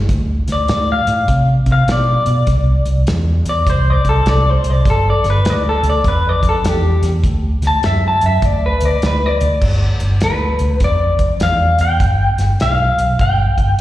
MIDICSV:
0, 0, Header, 1, 4, 480
1, 0, Start_track
1, 0, Tempo, 595238
1, 78, Time_signature, 4, 2, 24, 8
1, 11132, End_track
2, 0, Start_track
2, 0, Title_t, "Clean electric guitar"
2, 0, Program_c, 0, 27
2, 422, Note_on_c, 0, 74, 81
2, 721, Note_off_c, 0, 74, 0
2, 741, Note_on_c, 0, 77, 93
2, 1196, Note_off_c, 0, 77, 0
2, 1389, Note_on_c, 0, 77, 88
2, 1529, Note_off_c, 0, 77, 0
2, 1545, Note_on_c, 0, 74, 92
2, 2463, Note_off_c, 0, 74, 0
2, 2817, Note_on_c, 0, 74, 100
2, 2963, Note_off_c, 0, 74, 0
2, 2982, Note_on_c, 0, 72, 87
2, 3146, Note_off_c, 0, 72, 0
2, 3146, Note_on_c, 0, 74, 99
2, 3287, Note_off_c, 0, 74, 0
2, 3298, Note_on_c, 0, 69, 98
2, 3444, Note_off_c, 0, 69, 0
2, 3459, Note_on_c, 0, 74, 104
2, 3627, Note_off_c, 0, 74, 0
2, 3627, Note_on_c, 0, 72, 78
2, 3792, Note_off_c, 0, 72, 0
2, 3792, Note_on_c, 0, 74, 80
2, 3931, Note_off_c, 0, 74, 0
2, 3951, Note_on_c, 0, 69, 95
2, 4090, Note_off_c, 0, 69, 0
2, 4112, Note_on_c, 0, 74, 88
2, 4251, Note_off_c, 0, 74, 0
2, 4274, Note_on_c, 0, 71, 91
2, 4435, Note_off_c, 0, 71, 0
2, 4435, Note_on_c, 0, 74, 80
2, 4572, Note_off_c, 0, 74, 0
2, 4588, Note_on_c, 0, 69, 87
2, 4729, Note_off_c, 0, 69, 0
2, 4754, Note_on_c, 0, 74, 95
2, 4892, Note_off_c, 0, 74, 0
2, 4905, Note_on_c, 0, 71, 85
2, 5071, Note_off_c, 0, 71, 0
2, 5071, Note_on_c, 0, 74, 94
2, 5211, Note_off_c, 0, 74, 0
2, 5232, Note_on_c, 0, 69, 85
2, 5389, Note_off_c, 0, 69, 0
2, 5389, Note_on_c, 0, 67, 100
2, 5674, Note_off_c, 0, 67, 0
2, 6186, Note_on_c, 0, 81, 93
2, 6328, Note_off_c, 0, 81, 0
2, 6334, Note_on_c, 0, 76, 86
2, 6482, Note_off_c, 0, 76, 0
2, 6513, Note_on_c, 0, 81, 98
2, 6652, Note_off_c, 0, 81, 0
2, 6660, Note_on_c, 0, 76, 92
2, 6818, Note_off_c, 0, 76, 0
2, 6818, Note_on_c, 0, 74, 85
2, 6964, Note_off_c, 0, 74, 0
2, 6983, Note_on_c, 0, 71, 97
2, 7138, Note_off_c, 0, 71, 0
2, 7138, Note_on_c, 0, 74, 90
2, 7284, Note_off_c, 0, 74, 0
2, 7308, Note_on_c, 0, 71, 87
2, 7466, Note_off_c, 0, 71, 0
2, 7466, Note_on_c, 0, 74, 92
2, 7764, Note_off_c, 0, 74, 0
2, 8256, Note_on_c, 0, 71, 82
2, 8696, Note_off_c, 0, 71, 0
2, 8744, Note_on_c, 0, 74, 96
2, 9217, Note_on_c, 0, 77, 101
2, 9226, Note_off_c, 0, 74, 0
2, 9497, Note_off_c, 0, 77, 0
2, 9524, Note_on_c, 0, 79, 95
2, 10171, Note_off_c, 0, 79, 0
2, 10175, Note_on_c, 0, 77, 96
2, 10650, Note_off_c, 0, 77, 0
2, 10653, Note_on_c, 0, 79, 100
2, 11132, Note_off_c, 0, 79, 0
2, 11132, End_track
3, 0, Start_track
3, 0, Title_t, "Fingered electric bass"
3, 0, Program_c, 1, 33
3, 73, Note_on_c, 1, 38, 83
3, 306, Note_off_c, 1, 38, 0
3, 387, Note_on_c, 1, 38, 91
3, 515, Note_off_c, 1, 38, 0
3, 557, Note_on_c, 1, 45, 88
3, 789, Note_off_c, 1, 45, 0
3, 865, Note_on_c, 1, 45, 88
3, 993, Note_off_c, 1, 45, 0
3, 1032, Note_on_c, 1, 48, 84
3, 1266, Note_off_c, 1, 48, 0
3, 1341, Note_on_c, 1, 48, 84
3, 1472, Note_off_c, 1, 48, 0
3, 1515, Note_on_c, 1, 47, 84
3, 1748, Note_off_c, 1, 47, 0
3, 1828, Note_on_c, 1, 47, 88
3, 1955, Note_off_c, 1, 47, 0
3, 1994, Note_on_c, 1, 36, 83
3, 2226, Note_off_c, 1, 36, 0
3, 2305, Note_on_c, 1, 36, 95
3, 2434, Note_off_c, 1, 36, 0
3, 2477, Note_on_c, 1, 40, 92
3, 2709, Note_off_c, 1, 40, 0
3, 2784, Note_on_c, 1, 40, 92
3, 2913, Note_off_c, 1, 40, 0
3, 2955, Note_on_c, 1, 36, 96
3, 3187, Note_off_c, 1, 36, 0
3, 3262, Note_on_c, 1, 36, 83
3, 3392, Note_off_c, 1, 36, 0
3, 3436, Note_on_c, 1, 36, 80
3, 3668, Note_off_c, 1, 36, 0
3, 3742, Note_on_c, 1, 36, 85
3, 3872, Note_off_c, 1, 36, 0
3, 3914, Note_on_c, 1, 31, 86
3, 4147, Note_off_c, 1, 31, 0
3, 4226, Note_on_c, 1, 31, 101
3, 4355, Note_off_c, 1, 31, 0
3, 4393, Note_on_c, 1, 38, 89
3, 4626, Note_off_c, 1, 38, 0
3, 4703, Note_on_c, 1, 38, 90
3, 4832, Note_off_c, 1, 38, 0
3, 4875, Note_on_c, 1, 41, 102
3, 5107, Note_off_c, 1, 41, 0
3, 5185, Note_on_c, 1, 41, 81
3, 5314, Note_off_c, 1, 41, 0
3, 5354, Note_on_c, 1, 40, 81
3, 5587, Note_off_c, 1, 40, 0
3, 5663, Note_on_c, 1, 40, 95
3, 5793, Note_off_c, 1, 40, 0
3, 5836, Note_on_c, 1, 38, 88
3, 6068, Note_off_c, 1, 38, 0
3, 6146, Note_on_c, 1, 38, 96
3, 6274, Note_off_c, 1, 38, 0
3, 6320, Note_on_c, 1, 42, 101
3, 6551, Note_off_c, 1, 42, 0
3, 6636, Note_on_c, 1, 42, 88
3, 6761, Note_off_c, 1, 42, 0
3, 6793, Note_on_c, 1, 38, 97
3, 7026, Note_off_c, 1, 38, 0
3, 7114, Note_on_c, 1, 38, 87
3, 7240, Note_off_c, 1, 38, 0
3, 7281, Note_on_c, 1, 38, 78
3, 7511, Note_off_c, 1, 38, 0
3, 7591, Note_on_c, 1, 38, 87
3, 7718, Note_off_c, 1, 38, 0
3, 7756, Note_on_c, 1, 31, 81
3, 7989, Note_off_c, 1, 31, 0
3, 8075, Note_on_c, 1, 31, 93
3, 8200, Note_off_c, 1, 31, 0
3, 8241, Note_on_c, 1, 38, 90
3, 8472, Note_off_c, 1, 38, 0
3, 8549, Note_on_c, 1, 38, 87
3, 8677, Note_off_c, 1, 38, 0
3, 8713, Note_on_c, 1, 41, 82
3, 8947, Note_off_c, 1, 41, 0
3, 9025, Note_on_c, 1, 41, 83
3, 9154, Note_off_c, 1, 41, 0
3, 9202, Note_on_c, 1, 40, 76
3, 9432, Note_off_c, 1, 40, 0
3, 9512, Note_on_c, 1, 40, 83
3, 9639, Note_off_c, 1, 40, 0
3, 9678, Note_on_c, 1, 31, 90
3, 9910, Note_off_c, 1, 31, 0
3, 9986, Note_on_c, 1, 31, 92
3, 10116, Note_off_c, 1, 31, 0
3, 10166, Note_on_c, 1, 35, 87
3, 10396, Note_off_c, 1, 35, 0
3, 10471, Note_on_c, 1, 35, 86
3, 10599, Note_off_c, 1, 35, 0
3, 10641, Note_on_c, 1, 31, 94
3, 10873, Note_off_c, 1, 31, 0
3, 10951, Note_on_c, 1, 31, 83
3, 11079, Note_off_c, 1, 31, 0
3, 11132, End_track
4, 0, Start_track
4, 0, Title_t, "Drums"
4, 72, Note_on_c, 9, 42, 81
4, 73, Note_on_c, 9, 36, 116
4, 153, Note_off_c, 9, 36, 0
4, 153, Note_off_c, 9, 42, 0
4, 384, Note_on_c, 9, 42, 59
4, 393, Note_on_c, 9, 38, 29
4, 465, Note_off_c, 9, 42, 0
4, 473, Note_off_c, 9, 38, 0
4, 551, Note_on_c, 9, 42, 84
4, 560, Note_on_c, 9, 38, 108
4, 631, Note_off_c, 9, 42, 0
4, 640, Note_off_c, 9, 38, 0
4, 862, Note_on_c, 9, 42, 67
4, 943, Note_off_c, 9, 42, 0
4, 1034, Note_on_c, 9, 36, 111
4, 1034, Note_on_c, 9, 42, 88
4, 1114, Note_off_c, 9, 36, 0
4, 1115, Note_off_c, 9, 42, 0
4, 1341, Note_on_c, 9, 42, 70
4, 1342, Note_on_c, 9, 36, 77
4, 1421, Note_off_c, 9, 42, 0
4, 1422, Note_off_c, 9, 36, 0
4, 1516, Note_on_c, 9, 42, 84
4, 1524, Note_on_c, 9, 38, 109
4, 1596, Note_off_c, 9, 42, 0
4, 1605, Note_off_c, 9, 38, 0
4, 1821, Note_on_c, 9, 42, 58
4, 1902, Note_off_c, 9, 42, 0
4, 1990, Note_on_c, 9, 42, 84
4, 1994, Note_on_c, 9, 36, 103
4, 1999, Note_on_c, 9, 38, 34
4, 2071, Note_off_c, 9, 42, 0
4, 2074, Note_off_c, 9, 36, 0
4, 2080, Note_off_c, 9, 38, 0
4, 2302, Note_on_c, 9, 42, 55
4, 2383, Note_off_c, 9, 42, 0
4, 2475, Note_on_c, 9, 42, 89
4, 2484, Note_on_c, 9, 38, 111
4, 2555, Note_off_c, 9, 42, 0
4, 2564, Note_off_c, 9, 38, 0
4, 2786, Note_on_c, 9, 42, 64
4, 2867, Note_off_c, 9, 42, 0
4, 2957, Note_on_c, 9, 36, 120
4, 2959, Note_on_c, 9, 42, 88
4, 3037, Note_off_c, 9, 36, 0
4, 3040, Note_off_c, 9, 42, 0
4, 3264, Note_on_c, 9, 36, 82
4, 3265, Note_on_c, 9, 42, 62
4, 3345, Note_off_c, 9, 36, 0
4, 3345, Note_off_c, 9, 42, 0
4, 3434, Note_on_c, 9, 42, 81
4, 3443, Note_on_c, 9, 38, 113
4, 3515, Note_off_c, 9, 42, 0
4, 3524, Note_off_c, 9, 38, 0
4, 3743, Note_on_c, 9, 42, 64
4, 3823, Note_off_c, 9, 42, 0
4, 3915, Note_on_c, 9, 36, 112
4, 3916, Note_on_c, 9, 42, 86
4, 3925, Note_on_c, 9, 38, 33
4, 3995, Note_off_c, 9, 36, 0
4, 3997, Note_off_c, 9, 42, 0
4, 4006, Note_off_c, 9, 38, 0
4, 4227, Note_on_c, 9, 42, 56
4, 4236, Note_on_c, 9, 38, 30
4, 4307, Note_off_c, 9, 42, 0
4, 4316, Note_off_c, 9, 38, 0
4, 4395, Note_on_c, 9, 42, 88
4, 4404, Note_on_c, 9, 38, 116
4, 4476, Note_off_c, 9, 42, 0
4, 4485, Note_off_c, 9, 38, 0
4, 4705, Note_on_c, 9, 42, 66
4, 4786, Note_off_c, 9, 42, 0
4, 4874, Note_on_c, 9, 36, 114
4, 4874, Note_on_c, 9, 42, 94
4, 4955, Note_off_c, 9, 36, 0
4, 4955, Note_off_c, 9, 42, 0
4, 5183, Note_on_c, 9, 36, 87
4, 5186, Note_on_c, 9, 42, 67
4, 5264, Note_off_c, 9, 36, 0
4, 5267, Note_off_c, 9, 42, 0
4, 5359, Note_on_c, 9, 42, 96
4, 5367, Note_on_c, 9, 38, 110
4, 5439, Note_off_c, 9, 42, 0
4, 5448, Note_off_c, 9, 38, 0
4, 5666, Note_on_c, 9, 42, 65
4, 5675, Note_on_c, 9, 38, 32
4, 5747, Note_off_c, 9, 42, 0
4, 5756, Note_off_c, 9, 38, 0
4, 5835, Note_on_c, 9, 36, 105
4, 5836, Note_on_c, 9, 42, 90
4, 5916, Note_off_c, 9, 36, 0
4, 5917, Note_off_c, 9, 42, 0
4, 6146, Note_on_c, 9, 42, 60
4, 6155, Note_on_c, 9, 38, 29
4, 6227, Note_off_c, 9, 42, 0
4, 6236, Note_off_c, 9, 38, 0
4, 6314, Note_on_c, 9, 42, 81
4, 6323, Note_on_c, 9, 38, 118
4, 6394, Note_off_c, 9, 42, 0
4, 6403, Note_off_c, 9, 38, 0
4, 6623, Note_on_c, 9, 42, 68
4, 6703, Note_off_c, 9, 42, 0
4, 6792, Note_on_c, 9, 42, 89
4, 6793, Note_on_c, 9, 36, 120
4, 6872, Note_off_c, 9, 42, 0
4, 6874, Note_off_c, 9, 36, 0
4, 7100, Note_on_c, 9, 42, 65
4, 7181, Note_off_c, 9, 42, 0
4, 7275, Note_on_c, 9, 42, 78
4, 7284, Note_on_c, 9, 38, 107
4, 7355, Note_off_c, 9, 42, 0
4, 7364, Note_off_c, 9, 38, 0
4, 7585, Note_on_c, 9, 42, 58
4, 7666, Note_off_c, 9, 42, 0
4, 7754, Note_on_c, 9, 36, 103
4, 7754, Note_on_c, 9, 49, 105
4, 7834, Note_off_c, 9, 49, 0
4, 7835, Note_off_c, 9, 36, 0
4, 8063, Note_on_c, 9, 42, 55
4, 8144, Note_off_c, 9, 42, 0
4, 8230, Note_on_c, 9, 42, 88
4, 8238, Note_on_c, 9, 38, 103
4, 8310, Note_off_c, 9, 42, 0
4, 8319, Note_off_c, 9, 38, 0
4, 8539, Note_on_c, 9, 42, 59
4, 8619, Note_off_c, 9, 42, 0
4, 8710, Note_on_c, 9, 42, 88
4, 8714, Note_on_c, 9, 36, 110
4, 8719, Note_on_c, 9, 38, 33
4, 8791, Note_off_c, 9, 42, 0
4, 8795, Note_off_c, 9, 36, 0
4, 8800, Note_off_c, 9, 38, 0
4, 9022, Note_on_c, 9, 42, 66
4, 9024, Note_on_c, 9, 36, 81
4, 9103, Note_off_c, 9, 42, 0
4, 9104, Note_off_c, 9, 36, 0
4, 9193, Note_on_c, 9, 42, 83
4, 9202, Note_on_c, 9, 38, 98
4, 9274, Note_off_c, 9, 42, 0
4, 9282, Note_off_c, 9, 38, 0
4, 9503, Note_on_c, 9, 42, 58
4, 9583, Note_off_c, 9, 42, 0
4, 9677, Note_on_c, 9, 36, 109
4, 9677, Note_on_c, 9, 42, 82
4, 9758, Note_off_c, 9, 36, 0
4, 9758, Note_off_c, 9, 42, 0
4, 9985, Note_on_c, 9, 42, 57
4, 9994, Note_on_c, 9, 38, 28
4, 10066, Note_off_c, 9, 42, 0
4, 10075, Note_off_c, 9, 38, 0
4, 10159, Note_on_c, 9, 42, 77
4, 10168, Note_on_c, 9, 38, 103
4, 10240, Note_off_c, 9, 42, 0
4, 10249, Note_off_c, 9, 38, 0
4, 10471, Note_on_c, 9, 42, 61
4, 10552, Note_off_c, 9, 42, 0
4, 10639, Note_on_c, 9, 36, 113
4, 10640, Note_on_c, 9, 42, 79
4, 10720, Note_off_c, 9, 36, 0
4, 10720, Note_off_c, 9, 42, 0
4, 10948, Note_on_c, 9, 36, 73
4, 10950, Note_on_c, 9, 42, 55
4, 11029, Note_off_c, 9, 36, 0
4, 11030, Note_off_c, 9, 42, 0
4, 11132, End_track
0, 0, End_of_file